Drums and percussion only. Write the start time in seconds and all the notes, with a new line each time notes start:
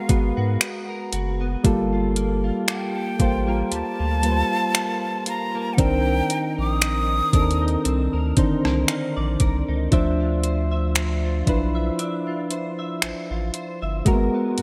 0.09 kick, closed hi-hat
0.61 finger snap, closed hi-hat
1.13 closed hi-hat
1.65 kick, closed hi-hat
2.16 closed hi-hat
2.68 finger snap, closed hi-hat
3.20 kick, closed hi-hat
3.72 closed hi-hat
4.23 closed hi-hat
4.75 finger snap, closed hi-hat
5.26 closed hi-hat
5.78 kick, closed hi-hat
6.30 closed hi-hat
6.82 finger snap, closed hi-hat
7.33 kick, closed hi-hat
7.51 closed hi-hat
7.68 closed hi-hat
7.85 closed hi-hat
8.37 kick, closed hi-hat
8.65 cross-stick
8.88 finger snap, closed hi-hat
9.40 kick, closed hi-hat
9.92 kick, closed hi-hat
10.44 closed hi-hat
10.95 finger snap, closed hi-hat
11.47 kick, closed hi-hat
11.99 closed hi-hat
12.51 closed hi-hat
13.02 finger snap, closed hi-hat
13.54 closed hi-hat
14.06 kick, closed hi-hat
14.58 closed hi-hat